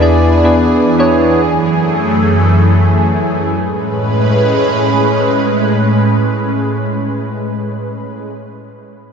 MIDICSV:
0, 0, Header, 1, 3, 480
1, 0, Start_track
1, 0, Key_signature, 3, "major"
1, 0, Tempo, 500000
1, 8762, End_track
2, 0, Start_track
2, 0, Title_t, "Synth keys"
2, 0, Program_c, 0, 88
2, 0, Control_c, 0, 64, 127
2, 0, Note_on_c, 0, 59, 88
2, 0, Note_on_c, 0, 62, 80
2, 0, Note_on_c, 0, 64, 84
2, 0, Note_on_c, 0, 68, 80
2, 0, Note_on_c, 0, 71, 98
2, 0, Note_on_c, 0, 74, 94
2, 9, Note_off_c, 0, 59, 0
2, 9, Note_on_c, 0, 59, 80
2, 13, Note_off_c, 0, 62, 0
2, 13, Note_on_c, 0, 62, 78
2, 16, Note_off_c, 0, 64, 0
2, 16, Note_on_c, 0, 64, 80
2, 19, Note_off_c, 0, 68, 0
2, 19, Note_on_c, 0, 68, 75
2, 22, Note_off_c, 0, 74, 0
2, 22, Note_on_c, 0, 74, 92
2, 331, Note_off_c, 0, 59, 0
2, 333, Note_off_c, 0, 62, 0
2, 334, Note_off_c, 0, 64, 0
2, 336, Note_off_c, 0, 68, 0
2, 338, Note_off_c, 0, 74, 0
2, 421, Note_on_c, 0, 59, 83
2, 425, Note_on_c, 0, 62, 77
2, 428, Note_on_c, 0, 64, 79
2, 431, Note_on_c, 0, 68, 77
2, 436, Note_off_c, 0, 71, 0
2, 436, Note_on_c, 0, 71, 91
2, 823, Note_off_c, 0, 59, 0
2, 825, Note_off_c, 0, 62, 0
2, 827, Note_off_c, 0, 64, 0
2, 829, Note_off_c, 0, 68, 0
2, 831, Note_off_c, 0, 71, 0
2, 946, Note_on_c, 0, 59, 88
2, 950, Note_on_c, 0, 62, 78
2, 953, Note_on_c, 0, 64, 84
2, 955, Note_on_c, 0, 68, 80
2, 960, Note_on_c, 0, 73, 100
2, 1252, Note_off_c, 0, 59, 0
2, 1253, Note_off_c, 0, 62, 0
2, 1255, Note_off_c, 0, 64, 0
2, 1256, Note_off_c, 0, 68, 0
2, 1258, Note_off_c, 0, 73, 0
2, 1331, Control_c, 0, 64, 0
2, 8762, End_track
3, 0, Start_track
3, 0, Title_t, "Analog synth pad"
3, 0, Program_c, 1, 89
3, 0, Note_on_c, 1, 40, 78
3, 0, Note_on_c, 1, 52, 70
3, 0, Note_on_c, 1, 62, 75
3, 0, Note_on_c, 1, 68, 85
3, 1278, Note_off_c, 1, 62, 0
3, 1296, Note_off_c, 1, 40, 0
3, 1316, Note_on_c, 1, 42, 75
3, 1316, Note_on_c, 1, 57, 72
3, 3372, Note_off_c, 1, 68, 0
3, 3373, Note_off_c, 1, 52, 0
3, 3390, Note_off_c, 1, 42, 0
3, 3390, Note_off_c, 1, 57, 0
3, 3410, Note_on_c, 1, 56, 70
3, 3411, Note_on_c, 1, 61, 69
3, 3412, Note_on_c, 1, 45, 80
3, 3412, Note_on_c, 1, 71, 89
3, 7972, Note_off_c, 1, 56, 0
3, 7973, Note_off_c, 1, 61, 0
3, 7974, Note_off_c, 1, 45, 0
3, 7974, Note_off_c, 1, 71, 0
3, 8762, End_track
0, 0, End_of_file